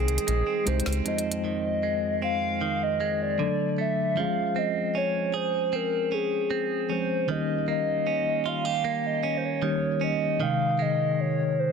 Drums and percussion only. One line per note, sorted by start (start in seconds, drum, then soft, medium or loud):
0.08 closed hi-hat medium
0.18 closed hi-hat medium
0.28 closed hi-hat medium
0.67 closed hi-hat soft
0.67 open hi-hat medium
0.80 closed hi-hat medium
0.86 snare loud
0.93 closed hi-hat medium
1.06 closed hi-hat medium
1.18 closed hi-hat medium
1.32 closed hi-hat medium